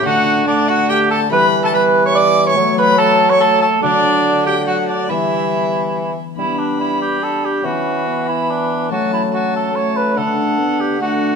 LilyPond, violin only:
\new Staff \with { instrumentName = "Violin" } { \time 3/4 \key e \dorian \tempo 4 = 143 fis''4 d''8 fis''8 g''8 a''8 | b''8. a''16 b''8. cis'''16 d'''8. cis'''16~ | cis'''8 b''8 a''8. cis'''16 a''8 a''8 | d''4. g''8 fis''8 d''8 |
e''2~ e''8 r8 | b''2. | b''2. | a''4 a''4 a''4 |
fis''2 fis''4 | }